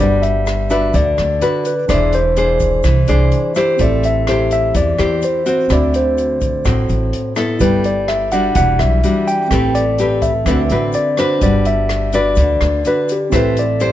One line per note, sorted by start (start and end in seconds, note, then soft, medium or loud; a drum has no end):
0.00 0.90 G1 medium
0.00 0.92 G3 medium
0.00 0.43 D4 medium
0.00 1.85 D4 soft
0.00 0.43 F#4 medium
0.00 0.43 B4 medium
0.00 1.87 B4 soft
0.00 0.22 D5 medium
0.00 1.88 F#5 soft
0.22 0.70 E5 medium
0.22 closed hi-hat soft
0.22 shaker soft
0.46 cross-stick medium
0.46 closed hi-hat soft
0.46 shaker medium
0.70 1.38 D4 medium
0.70 1.38 F#4 medium
0.70 1.38 B4 medium
0.70 0.95 E5 loud
0.70 closed hi-hat soft
0.70 shaker medium
0.94 1.16 D2 medium
0.94 1.87 D3 medium
0.94 1.44 D5 medium
0.94 kick medium
0.94 closed hi-hat medium
0.94 shaker medium
1.17 1.40 D2 medium
1.17 cross-stick soft
1.17 closed hi-hat soft
1.17 shaker soft
1.41 1.72 D4 soft
1.41 1.72 F#4 medium
1.41 1.72 B4 medium
1.41 1.65 B4 medium
1.41 closed hi-hat soft
1.41 shaker soft
1.65 1.90 B4 medium
1.65 closed hi-hat soft
1.65 shaker medium
1.88 2.80 E1 medium
1.88 2.82 E3 medium
1.88 3.75 D4 soft
1.88 2.20 D4 medium
1.88 3.76 G#4 soft
1.88 2.20 G#4 medium
1.88 2.20 C5 medium
1.88 3.77 C5 soft
1.88 2.14 D5 medium
1.88 kick medium
1.88 cross-stick medium
1.88 closed hi-hat soft
1.88 shaker medium
1.94 3.78 E5 medium
2.13 3.56 C5 medium
2.13 closed hi-hat soft
2.13 shaker soft
2.36 2.84 D4 medium
2.36 2.84 G#4 medium
2.36 2.84 C5 medium
2.36 closed hi-hat soft
2.36 shaker medium
2.60 kick soft
2.60 closed hi-hat soft
2.60 shaker medium
2.83 3.06 C2 medium
2.83 3.77 E3 medium
2.83 kick medium
2.83 cross-stick medium
2.83 closed hi-hat soft
2.83 shaker medium
3.07 3.31 C2 medium
3.07 3.52 D4 medium
3.07 3.52 G#4 medium
3.07 3.53 C5 medium
3.07 closed hi-hat soft
3.07 shaker soft
3.32 closed hi-hat soft
3.55 4.27 E4 medium
3.55 4.27 G4 medium
3.55 4.28 C5 medium
3.55 3.81 C5 medium
3.55 cross-stick soft
3.55 closed hi-hat soft
3.55 shaker medium
3.77 4.71 A1 medium
3.77 4.72 A3 medium
3.77 5.65 C4 soft
3.77 5.66 G4 soft
3.77 kick medium
3.77 closed hi-hat medium
3.77 shaker medium
3.81 5.67 A4 soft
3.81 4.05 D5 medium
3.81 5.68 E5 medium
4.03 4.51 E5 medium
4.03 closed hi-hat soft
4.03 shaker soft
4.27 4.95 E4 medium
4.27 4.95 G4 medium
4.27 4.96 C5 medium
4.27 cross-stick medium
4.27 closed hi-hat soft
4.51 4.74 E5 loud
4.51 closed hi-hat soft
4.51 shaker medium
4.75 4.97 E2 medium
4.75 5.68 E3 medium
4.75 5.25 D5 medium
4.75 kick medium
4.75 closed hi-hat medium
4.75 shaker medium
4.98 5.21 E2 medium
4.98 5.42 E4 medium
4.98 5.43 G4 medium
4.98 5.43 C5 medium
4.98 cross-stick soft
4.98 closed hi-hat soft
4.98 shaker soft
5.22 5.48 C5 medium
5.22 closed hi-hat soft
5.22 shaker medium
5.46 6.37 C4 medium
5.46 6.38 F#4 medium
5.46 5.72 C5 medium
5.46 closed hi-hat soft
5.46 shaker medium
5.68 6.61 D2 medium
5.68 6.63 D3 medium
5.68 7.56 C4 soft
5.68 7.57 F#4 soft
5.68 kick medium
5.68 cross-stick medium
5.68 closed hi-hat medium
5.68 shaker medium
5.72 5.94 D5 medium
5.72 7.59 E5 soft
5.72 7.58 B5 soft
5.94 7.34 C5 medium
5.94 closed hi-hat soft
5.94 shaker soft
6.18 closed hi-hat soft
6.18 shaker medium
6.41 kick medium
6.41 closed hi-hat soft
6.41 shaker medium
6.65 6.87 A1 medium
6.65 7.58 A2 medium
6.65 7.33 C4 medium
6.65 7.33 F#4 medium
6.65 kick medium
6.65 cross-stick medium
6.65 closed hi-hat soft
6.65 shaker medium
6.89 7.11 A1 medium
6.89 closed hi-hat soft
6.89 shaker soft
7.13 closed hi-hat soft
7.36 8.04 B3 medium
7.36 8.04 E4 medium
7.36 8.05 A4 medium
7.36 cross-stick medium
7.36 closed hi-hat soft
7.36 shaker medium
7.58 8.52 G1 medium
7.58 8.31 G3 medium
7.58 8.51 E4 soft
7.58 8.54 A4 soft
7.58 7.85 B4 medium
7.58 8.55 B4 soft
7.58 kick medium
7.58 closed hi-hat medium
7.58 shaker medium
7.64 8.56 G5 medium
7.84 8.07 D5 medium
7.84 closed hi-hat soft
7.84 shaker soft
8.08 8.33 E5 medium
8.08 cross-stick medium
8.08 closed hi-hat soft
8.32 9.00 G3 medium
8.32 9.00 D4 medium
8.32 9.00 F#4 medium
8.32 8.54 F#5 medium
8.32 closed hi-hat soft
8.32 shaker medium
8.53 8.78 E1 medium
8.53 9.49 E3 medium
8.53 9.48 E4 soft
8.53 9.50 D5 soft
8.53 8.81 F#5 loud
8.53 kick medium
8.53 closed hi-hat medium
8.53 shaker medium
8.59 9.51 F#5 soft
8.79 9.02 B1 medium
8.79 9.29 E5 medium
8.79 cross-stick medium
8.79 closed hi-hat soft
8.79 shaker soft
9.04 9.47 G3 soft
9.04 9.48 D4 soft
9.04 9.48 F#4 medium
9.04 closed hi-hat soft
9.04 shaker medium
9.28 9.77 G5 medium
9.28 closed hi-hat soft
9.28 shaker medium
9.48 10.42 A1 medium
9.48 10.45 A3 medium
9.48 10.42 C4 soft
9.48 9.82 C4 medium
9.48 10.44 A4 soft
9.48 10.45 B4 soft
9.48 kick medium
9.48 cross-stick medium
9.48 closed hi-hat medium
9.48 shaker medium
9.52 9.82 G4 medium
9.52 9.83 B4 medium
9.52 10.46 G5 medium
9.75 10.24 D5 medium
9.75 closed hi-hat soft
9.75 shaker soft
9.98 10.31 C4 medium
9.98 10.31 G4 medium
9.98 10.32 B4 medium
9.98 closed hi-hat soft
9.98 shaker medium
10.22 10.90 E5 medium
10.22 kick soft
10.22 closed hi-hat soft
10.22 shaker medium
10.44 10.68 D2 medium
10.44 11.40 D3 medium
10.44 11.39 C4 soft
10.44 10.61 C4 soft
10.44 11.40 F#4 soft
10.44 10.61 F#4 medium
10.44 10.61 B4 medium
10.44 kick medium
10.44 cross-stick medium
10.44 closed hi-hat medium
10.44 shaker medium
10.48 11.41 B4 soft
10.48 11.42 E5 medium
10.69 10.93 A1 medium
10.69 11.15 C4 medium
10.69 11.15 F#4 medium
10.69 11.15 B4 medium
10.69 closed hi-hat soft
10.69 shaker soft
10.93 11.19 D5 medium
10.93 closed hi-hat soft
10.93 shaker medium
11.17 12.10 D4 medium
11.17 12.10 F#4 medium
11.17 12.10 B4 medium
11.17 11.43 C5 medium
11.17 cross-stick soft
11.17 closed hi-hat soft
11.17 shaker medium
11.39 12.33 G1 medium
11.39 12.35 G3 medium
11.39 13.27 D4 soft
11.39 13.29 B4 soft
11.39 kick medium
11.39 closed hi-hat soft
11.39 shaker medium
11.43 11.67 D5 medium
11.43 13.31 F#5 soft
11.65 12.15 E5 medium
11.65 closed hi-hat soft
11.65 shaker soft
11.89 cross-stick medium
11.89 closed hi-hat soft
12.13 12.81 D4 medium
12.13 12.82 F#4 medium
12.13 12.82 B4 medium
12.13 12.88 D5 medium
12.13 closed hi-hat soft
12.13 shaker medium
12.36 12.59 D2 medium
12.36 13.30 D3 medium
12.36 kick medium
12.36 closed hi-hat medium
12.36 shaker medium
12.61 12.83 D2 medium
12.61 cross-stick medium
12.61 closed hi-hat soft
12.61 shaker soft
12.85 13.16 D4 medium
12.85 13.16 F#4 soft
12.85 13.17 B4 medium
12.85 13.11 B4 medium
12.85 closed hi-hat soft
12.85 shaker medium
13.09 13.35 G4 medium
13.09 closed hi-hat soft
13.09 shaker medium
13.30 13.92 A1 medium
13.30 13.92 A3 medium
13.30 13.92 C4 soft
13.30 13.63 E4 medium
13.30 13.92 G4 soft
13.30 13.63 G4 medium
13.30 13.64 C5 medium
13.30 kick medium
13.30 cross-stick medium
13.30 closed hi-hat medium
13.30 shaker medium
13.34 13.92 A4 soft
13.34 13.59 B4 medium
13.34 13.92 E5 soft
13.57 13.92 D5 medium
13.57 closed hi-hat soft
13.57 shaker soft
13.80 13.92 E4 medium
13.80 13.92 G4 medium
13.80 13.92 C5 medium
13.80 closed hi-hat soft
13.80 shaker medium